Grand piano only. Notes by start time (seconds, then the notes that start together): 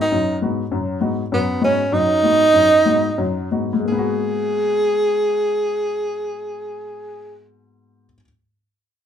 0.12 F#2 F#3
0.42 G#2 B3 D#4 F#4
0.71 F#2 F#3
1.01 G#2 B3 D#4 F#4
1.32 F#2 F#3
1.61 G#2 B3 D#4 F#4
1.92 F#2 F#3
2.23 G#2 B3 D#4 F#4
2.53 F#2
2.85 G#2 B3 D#4 F#4
3.18 F#2 F#3
3.51 G#2 B3 D#4 F#4
3.73 G#2
3.80 G#3
3.85 A#3
3.92 B3
3.98 F#4